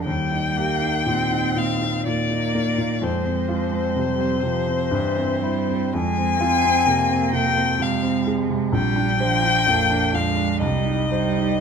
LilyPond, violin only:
\new Staff \with { instrumentName = "Violin" } { \time 3/4 \key ees \major \tempo 4 = 63 g''4. f''8 d''4 | c''2. | aes''4. g''8 f''8 r8 | g''4. f''8 ees''4 | }